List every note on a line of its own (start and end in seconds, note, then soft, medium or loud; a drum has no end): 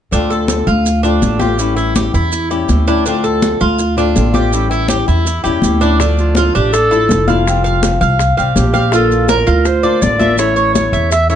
0.11 0.64 D2 medium
0.11 0.85 D3 medium
0.11 0.86 A3 medium
0.11 0.86 C4 medium
0.11 0.30 D4 medium
0.11 0.86 F4 medium
0.11 high conga soft
0.11 maracas medium
0.30 0.66 A4 medium
0.30 high conga soft
0.30 maracas soft
0.48 high conga medium
0.48 maracas medium
0.67 1.18 D2 medium
0.67 1.03 F4 medium
0.67 high conga soft
0.67 maracas soft
0.86 muted nylon-string guitar stroke medium
0.86 high conga soft
0.86 maracas medium
1.03 1.22 A3 medium
1.03 1.22 C4 medium
1.03 1.39 D4 medium
1.03 1.22 F4 medium
1.03 high conga soft
1.03 maracas soft
1.22 2.08 A1 medium
1.22 1.40 D3 soft
1.22 1.41 A3 soft
1.22 1.40 C4 soft
1.22 1.40 F4 soft
1.22 high conga medium
1.22 maracas medium
1.39 1.58 A3 medium
1.39 1.59 C4 medium
1.39 1.59 F4 medium
1.39 1.76 G4 medium
1.39 high conga medium
1.39 maracas soft
1.57 2.31 E3 medium
1.57 2.31 G3 medium
1.57 2.31 C#4 medium
1.57 2.31 E4 medium
1.57 high conga soft
1.57 maracas medium
1.77 1.95 E4 medium
1.77 high conga soft
1.77 maracas soft
1.96 2.14 G4 medium
1.96 high conga medium
1.96 maracas medium
2.14 2.65 E2 medium
2.14 2.50 E4 medium
2.14 high conga soft
2.14 maracas soft
2.32 muted nylon-string guitar stroke medium
2.32 high conga soft
2.32 maracas medium
2.50 2.69 G3 soft
2.50 2.69 C#4 medium
2.50 2.68 E4 medium
2.50 2.87 G4 medium
2.50 high conga soft
2.50 maracas soft
2.69 3.55 D2 medium
2.69 2.87 E3 soft
2.69 2.87 G3 soft
2.69 2.87 C#4 soft
2.69 2.87 E4 soft
2.69 high conga medium
2.69 maracas medium
2.87 3.06 G3 soft
2.87 3.06 C#4 medium
2.87 3.05 D4 medium
2.87 3.05 E4 medium
2.87 maracas soft
3.05 3.78 D3 medium
3.05 3.79 A3 medium
3.05 3.78 C4 medium
3.05 3.24 D4 medium
3.05 3.79 F4 medium
3.05 high conga soft
3.05 maracas medium
3.24 3.60 A4 medium
3.24 high conga soft
3.24 maracas soft
3.42 high conga medium
3.42 maracas medium
3.61 4.12 D2 medium
3.61 3.97 F4 medium
3.61 high conga soft
3.61 maracas soft
3.79 muted nylon-string guitar stroke medium
3.79 high conga soft
3.79 maracas medium
3.97 4.14 A3 soft
3.97 4.15 C4 medium
3.97 4.33 D4 medium
3.97 4.15 F4 medium
3.97 high conga soft
3.97 maracas soft
4.15 5.02 A1 medium
4.15 4.33 D3 soft
4.15 4.34 A3 soft
4.15 4.33 C4 soft
4.15 4.31 F4 medium
4.15 high conga medium
4.15 maracas medium
4.33 4.52 A3 medium
4.33 4.52 C4 medium
4.33 4.51 F4 medium
4.33 4.70 G4 medium
4.33 high conga medium
4.33 maracas soft
4.51 5.25 E3 medium
4.51 5.25 G3 medium
4.51 5.25 C#4 medium
4.51 5.25 E4 medium
4.51 high conga soft
4.51 maracas medium
4.71 4.89 E4 medium
4.71 high conga soft
4.71 maracas soft
4.88 5.07 G4 medium
4.88 high conga medium
4.88 maracas medium
5.07 5.42 E2 medium
5.07 5.43 E4 medium
5.07 high conga soft
5.07 maracas soft
5.25 muted nylon-string guitar stroke medium
5.25 high conga soft
5.25 maracas medium
5.44 5.62 E2 medium
5.44 5.63 G3 medium
5.44 5.63 C#4 medium
5.44 5.62 E4 medium
5.44 5.80 G4 medium
5.44 high conga soft
5.44 maracas soft
5.62 6.48 D2 medium
5.62 5.81 E3 soft
5.62 5.81 G3 soft
5.62 5.81 C#4 soft
5.62 5.80 E4 soft
5.62 high conga medium
5.62 maracas medium
5.81 6.00 G3 medium
5.81 5.99 C#4 medium
5.81 5.99 D4 medium
5.81 5.99 E4 medium
5.81 maracas soft
5.99 6.72 D3 medium
5.99 6.74 F3 medium
5.99 6.73 A3 medium
5.99 6.35 D4 medium
5.99 6.73 D4 medium
5.99 high bongo medium
5.99 high conga soft
5.99 maracas medium
6.17 6.58 F4 medium
6.17 high bongo soft
6.17 high conga soft
6.17 maracas soft
6.35 6.54 F4 medium
6.35 high bongo medium
6.35 high conga medium
6.35 maracas medium
6.53 7.06 A1 medium
6.53 6.90 D4 medium
6.53 6.72 G4 medium
6.53 high bongo soft
6.53 high conga soft
6.53 maracas soft
6.72 7.31 A4 loud
6.72 muted nylon-string guitar stroke medium
6.72 high bongo medium
6.72 high conga soft
6.72 maracas medium
6.91 7.09 F3 soft
6.91 7.09 A3 medium
6.91 7.09 D4 medium
6.91 7.09 E4 medium
6.91 7.27 A4 medium
6.91 high conga soft
6.91 maracas soft
7.09 7.96 F1 medium
7.09 7.28 F3 soft
7.09 7.28 A3 soft
7.09 7.28 D4 soft
7.09 7.27 E4 soft
7.09 high bongo soft
7.09 low bongo medium
7.09 high conga medium
7.09 maracas medium
7.28 7.44 F3 soft
7.28 7.46 A3 medium
7.28 7.46 D4 medium
7.28 7.45 E4 medium
7.28 8.02 F4 medium
7.28 7.63 F5 medium
7.28 high bongo soft
7.28 high conga medium
7.28 maracas soft
7.45 8.19 F3 medium
7.45 8.19 G3 medium
7.45 8.19 C4 medium
7.45 8.19 G4 medium
7.45 high bongo medium
7.45 high conga soft
7.45 maracas medium
7.64 8.00 F5 medium
7.64 high bongo soft
7.64 high conga soft
7.64 maracas soft
7.83 high bongo medium
7.83 high conga medium
7.83 maracas medium
8.01 8.35 C2 medium
8.01 8.36 F5 medium
8.01 high bongo soft
8.01 high conga soft
8.01 maracas soft
8.19 muted nylon-string guitar stroke medium
8.19 high bongo medium
8.19 high conga soft
8.19 maracas medium
8.37 8.55 C2 medium
8.37 8.56 G3 medium
8.37 8.56 C4 medium
8.37 8.55 G4 medium
8.37 8.72 F5 medium
8.37 high conga soft
8.37 maracas soft
8.56 9.41 A#1 medium
8.56 8.74 F3 soft
8.56 8.74 G3 soft
8.56 8.73 C4 soft
8.56 8.90 G4 medium
8.56 8.72 G4 medium
8.56 high bongo soft
8.56 low bongo medium
8.56 high conga medium
8.56 maracas medium
8.73 8.92 G3 medium
8.73 8.92 C4 medium
8.73 8.91 G4 medium
8.73 8.92 F5 medium
8.73 high bongo soft
8.73 high conga medium
8.73 maracas soft
8.91 9.64 D3 medium
8.91 9.64 A#3 medium
8.91 9.64 D4 medium
8.91 9.28 F4 medium
8.91 9.65 F4 medium
8.91 9.30 A4 medium
8.91 high bongo medium
8.91 high conga soft
8.91 maracas medium
9.11 high bongo soft
9.11 high conga soft
9.11 maracas soft
9.28 9.68 A#4 medium
9.28 9.47 A#4 medium
9.28 high bongo medium
9.28 high conga medium
9.28 maracas medium
9.47 9.98 D2 medium
9.47 9.83 F4 medium
9.47 high bongo soft
9.47 high conga soft
9.47 maracas soft
9.65 10.04 C5 medium
9.65 muted nylon-string guitar stroke medium
9.65 high bongo medium
9.65 high conga soft
9.65 maracas medium
9.83 10.00 A#3 medium
9.83 10.01 D4 medium
9.83 10.01 F4 medium
9.83 10.19 D5 medium
9.83 high conga soft
9.83 maracas soft
10.01 10.88 A1 medium
10.01 10.19 D3 soft
10.01 10.19 A#3 medium
10.01 10.19 D4 medium
10.01 10.18 F4 medium
10.01 10.38 D5 medium
10.01 high bongo soft
10.01 low bongo medium
10.01 high conga medium
10.01 maracas medium
10.19 10.38 A#3 medium
10.19 10.38 D4 medium
10.19 10.37 F4 medium
10.19 10.55 E5 medium
10.19 high bongo soft
10.19 high conga medium
10.19 maracas soft
10.37 11.09 E3 medium
10.37 11.10 A3 medium
10.37 11.10 C#4 medium
10.37 11.10 E4 medium
10.37 10.73 C#5 medium
10.37 high bongo medium
10.37 maracas medium
10.56 10.92 C#5 medium
10.56 high bongo soft
10.56 high conga soft
10.56 maracas soft
10.74 11.09 C#5 medium
10.74 high bongo medium
10.74 high conga medium
10.74 maracas medium
10.92 11.35 E2 medium
10.92 11.29 E5 medium
10.92 high bongo soft
10.92 high conga soft
10.92 maracas soft
11.10 11.29 E5 loud
11.10 muted nylon-string guitar stroke medium
11.10 high bongo medium
11.10 high conga soft
11.10 maracas medium
11.29 11.35 A3 medium
11.29 11.35 C#4 medium
11.29 11.35 E4 medium
11.29 11.35 C#5 medium
11.29 11.35 E5 medium
11.29 high conga soft
11.29 maracas soft